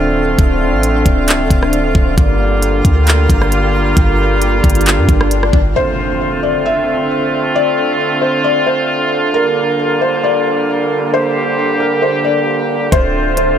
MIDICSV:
0, 0, Header, 1, 9, 480
1, 0, Start_track
1, 0, Key_signature, -1, "minor"
1, 0, Tempo, 447761
1, 414, Time_signature, 4, 2, 24, 8
1, 14561, End_track
2, 0, Start_track
2, 0, Title_t, "Clean electric guitar"
2, 0, Program_c, 0, 27
2, 13851, Note_on_c, 0, 74, 111
2, 14334, Note_on_c, 0, 72, 82
2, 14561, Note_off_c, 0, 72, 0
2, 14561, Note_off_c, 0, 74, 0
2, 14561, End_track
3, 0, Start_track
3, 0, Title_t, "Felt piano"
3, 0, Program_c, 1, 0
3, 6177, Note_on_c, 1, 72, 105
3, 6852, Note_off_c, 1, 72, 0
3, 6893, Note_on_c, 1, 74, 82
3, 7121, Note_off_c, 1, 74, 0
3, 7135, Note_on_c, 1, 76, 97
3, 7586, Note_off_c, 1, 76, 0
3, 8099, Note_on_c, 1, 74, 102
3, 8773, Note_off_c, 1, 74, 0
3, 8807, Note_on_c, 1, 72, 74
3, 9038, Note_off_c, 1, 72, 0
3, 9050, Note_on_c, 1, 74, 93
3, 9280, Note_off_c, 1, 74, 0
3, 9289, Note_on_c, 1, 72, 85
3, 9519, Note_off_c, 1, 72, 0
3, 10013, Note_on_c, 1, 70, 112
3, 10690, Note_off_c, 1, 70, 0
3, 10734, Note_on_c, 1, 72, 82
3, 10962, Note_off_c, 1, 72, 0
3, 10974, Note_on_c, 1, 74, 90
3, 11425, Note_off_c, 1, 74, 0
3, 11938, Note_on_c, 1, 72, 101
3, 12613, Note_off_c, 1, 72, 0
3, 12650, Note_on_c, 1, 70, 89
3, 12880, Note_off_c, 1, 70, 0
3, 12888, Note_on_c, 1, 72, 83
3, 13119, Note_off_c, 1, 72, 0
3, 13127, Note_on_c, 1, 74, 85
3, 13358, Note_off_c, 1, 74, 0
3, 13857, Note_on_c, 1, 72, 111
3, 14533, Note_off_c, 1, 72, 0
3, 14561, End_track
4, 0, Start_track
4, 0, Title_t, "Synth texture"
4, 0, Program_c, 2, 99
4, 0, Note_on_c, 2, 62, 84
4, 0, Note_on_c, 2, 72, 75
4, 0, Note_on_c, 2, 77, 96
4, 2296, Note_off_c, 2, 62, 0
4, 2296, Note_off_c, 2, 72, 0
4, 2296, Note_off_c, 2, 77, 0
4, 2334, Note_on_c, 2, 65, 81
4, 2334, Note_on_c, 2, 70, 75
4, 2334, Note_on_c, 2, 79, 88
4, 6135, Note_off_c, 2, 70, 0
4, 6136, Note_off_c, 2, 65, 0
4, 6136, Note_off_c, 2, 79, 0
4, 14561, End_track
5, 0, Start_track
5, 0, Title_t, "Brass ensemble"
5, 0, Program_c, 3, 61
5, 0, Note_on_c, 3, 50, 84
5, 0, Note_on_c, 3, 57, 77
5, 0, Note_on_c, 3, 60, 77
5, 0, Note_on_c, 3, 65, 94
5, 2291, Note_off_c, 3, 65, 0
5, 2295, Note_off_c, 3, 57, 0
5, 2296, Note_off_c, 3, 60, 0
5, 2333, Note_on_c, 3, 55, 81
5, 2333, Note_on_c, 3, 58, 75
5, 2333, Note_on_c, 3, 65, 96
5, 5992, Note_off_c, 3, 50, 0
5, 5992, Note_off_c, 3, 55, 0
5, 5992, Note_off_c, 3, 58, 0
5, 5992, Note_off_c, 3, 65, 0
5, 6174, Note_on_c, 3, 50, 87
5, 6174, Note_on_c, 3, 57, 79
5, 6174, Note_on_c, 3, 60, 78
5, 6174, Note_on_c, 3, 65, 95
5, 9976, Note_off_c, 3, 57, 0
5, 9976, Note_off_c, 3, 60, 0
5, 10015, Note_on_c, 3, 55, 78
5, 10015, Note_on_c, 3, 58, 79
5, 11891, Note_off_c, 3, 65, 0
5, 11933, Note_on_c, 3, 67, 97
5, 13816, Note_off_c, 3, 55, 0
5, 13816, Note_off_c, 3, 58, 0
5, 13834, Note_off_c, 3, 67, 0
5, 13853, Note_on_c, 3, 60, 77
5, 13854, Note_on_c, 3, 57, 78
5, 13854, Note_on_c, 3, 65, 98
5, 14561, Note_off_c, 3, 50, 0
5, 14561, Note_off_c, 3, 57, 0
5, 14561, Note_off_c, 3, 60, 0
5, 14561, Note_off_c, 3, 65, 0
5, 14561, End_track
6, 0, Start_track
6, 0, Title_t, "808-style bass"
6, 0, Program_c, 4, 38
6, 0, Note_on_c, 4, 26, 102
6, 385, Note_off_c, 4, 26, 0
6, 414, Note_on_c, 4, 26, 108
6, 773, Note_on_c, 4, 33, 101
6, 789, Note_off_c, 4, 26, 0
6, 1115, Note_off_c, 4, 33, 0
6, 1133, Note_on_c, 4, 26, 111
6, 1372, Note_on_c, 4, 24, 99
6, 1389, Note_off_c, 4, 26, 0
6, 1493, Note_on_c, 4, 26, 101
6, 1509, Note_off_c, 4, 24, 0
6, 1607, Note_off_c, 4, 26, 0
6, 1613, Note_on_c, 4, 26, 103
6, 2074, Note_off_c, 4, 26, 0
6, 2091, Note_on_c, 4, 26, 103
6, 2322, Note_off_c, 4, 26, 0
6, 2333, Note_on_c, 4, 31, 117
6, 3025, Note_off_c, 4, 31, 0
6, 3053, Note_on_c, 4, 38, 104
6, 3514, Note_off_c, 4, 38, 0
6, 3533, Note_on_c, 4, 31, 101
6, 4225, Note_off_c, 4, 31, 0
6, 4254, Note_on_c, 4, 31, 115
6, 4945, Note_off_c, 4, 31, 0
6, 4973, Note_on_c, 4, 31, 109
6, 5334, Note_on_c, 4, 43, 98
6, 5350, Note_off_c, 4, 31, 0
6, 5448, Note_off_c, 4, 43, 0
6, 5453, Note_on_c, 4, 31, 105
6, 5914, Note_off_c, 4, 31, 0
6, 5931, Note_on_c, 4, 31, 99
6, 6163, Note_off_c, 4, 31, 0
6, 13854, Note_on_c, 4, 26, 119
6, 14545, Note_off_c, 4, 26, 0
6, 14561, End_track
7, 0, Start_track
7, 0, Title_t, "Impact"
7, 0, Program_c, 5, 103
7, 6174, Note_on_c, 5, 60, 83
7, 8094, Note_off_c, 5, 60, 0
7, 14561, End_track
8, 0, Start_track
8, 0, Title_t, "Swell"
8, 0, Program_c, 6, 103
8, 2334, Note_on_c, 6, 60, 86
8, 6174, Note_off_c, 6, 60, 0
8, 14561, End_track
9, 0, Start_track
9, 0, Title_t, "Drums"
9, 413, Note_on_c, 9, 36, 118
9, 413, Note_on_c, 9, 42, 69
9, 521, Note_off_c, 9, 36, 0
9, 521, Note_off_c, 9, 42, 0
9, 894, Note_on_c, 9, 42, 72
9, 1001, Note_off_c, 9, 42, 0
9, 1133, Note_on_c, 9, 36, 97
9, 1135, Note_on_c, 9, 42, 70
9, 1240, Note_off_c, 9, 36, 0
9, 1242, Note_off_c, 9, 42, 0
9, 1371, Note_on_c, 9, 42, 85
9, 1383, Note_on_c, 9, 39, 98
9, 1478, Note_off_c, 9, 42, 0
9, 1490, Note_off_c, 9, 39, 0
9, 1613, Note_on_c, 9, 36, 101
9, 1616, Note_on_c, 9, 42, 68
9, 1720, Note_off_c, 9, 36, 0
9, 1723, Note_off_c, 9, 42, 0
9, 1743, Note_on_c, 9, 37, 94
9, 1850, Note_off_c, 9, 37, 0
9, 1854, Note_on_c, 9, 42, 72
9, 1961, Note_off_c, 9, 42, 0
9, 2091, Note_on_c, 9, 36, 106
9, 2198, Note_off_c, 9, 36, 0
9, 2333, Note_on_c, 9, 36, 123
9, 2333, Note_on_c, 9, 42, 70
9, 2440, Note_off_c, 9, 36, 0
9, 2440, Note_off_c, 9, 42, 0
9, 2814, Note_on_c, 9, 42, 74
9, 2921, Note_off_c, 9, 42, 0
9, 3053, Note_on_c, 9, 36, 100
9, 3054, Note_on_c, 9, 42, 69
9, 3160, Note_off_c, 9, 36, 0
9, 3161, Note_off_c, 9, 42, 0
9, 3290, Note_on_c, 9, 42, 80
9, 3303, Note_on_c, 9, 39, 102
9, 3397, Note_off_c, 9, 42, 0
9, 3410, Note_off_c, 9, 39, 0
9, 3533, Note_on_c, 9, 36, 105
9, 3536, Note_on_c, 9, 42, 62
9, 3640, Note_off_c, 9, 36, 0
9, 3643, Note_off_c, 9, 42, 0
9, 3662, Note_on_c, 9, 37, 95
9, 3769, Note_off_c, 9, 37, 0
9, 3773, Note_on_c, 9, 42, 69
9, 3881, Note_off_c, 9, 42, 0
9, 4253, Note_on_c, 9, 36, 125
9, 4254, Note_on_c, 9, 42, 70
9, 4361, Note_off_c, 9, 36, 0
9, 4361, Note_off_c, 9, 42, 0
9, 4734, Note_on_c, 9, 42, 72
9, 4841, Note_off_c, 9, 42, 0
9, 4973, Note_on_c, 9, 36, 100
9, 4974, Note_on_c, 9, 42, 60
9, 5034, Note_off_c, 9, 42, 0
9, 5034, Note_on_c, 9, 42, 60
9, 5080, Note_off_c, 9, 36, 0
9, 5094, Note_off_c, 9, 42, 0
9, 5094, Note_on_c, 9, 42, 54
9, 5154, Note_off_c, 9, 42, 0
9, 5154, Note_on_c, 9, 42, 53
9, 5211, Note_off_c, 9, 42, 0
9, 5211, Note_on_c, 9, 42, 85
9, 5224, Note_on_c, 9, 39, 104
9, 5318, Note_off_c, 9, 42, 0
9, 5331, Note_off_c, 9, 39, 0
9, 5453, Note_on_c, 9, 36, 102
9, 5456, Note_on_c, 9, 42, 66
9, 5560, Note_off_c, 9, 36, 0
9, 5563, Note_off_c, 9, 42, 0
9, 5582, Note_on_c, 9, 37, 98
9, 5689, Note_off_c, 9, 37, 0
9, 5694, Note_on_c, 9, 42, 67
9, 5801, Note_off_c, 9, 42, 0
9, 5821, Note_on_c, 9, 37, 90
9, 5929, Note_off_c, 9, 37, 0
9, 5931, Note_on_c, 9, 36, 100
9, 6038, Note_off_c, 9, 36, 0
9, 13854, Note_on_c, 9, 36, 127
9, 13854, Note_on_c, 9, 42, 75
9, 13961, Note_off_c, 9, 36, 0
9, 13962, Note_off_c, 9, 42, 0
9, 14334, Note_on_c, 9, 42, 75
9, 14442, Note_off_c, 9, 42, 0
9, 14561, End_track
0, 0, End_of_file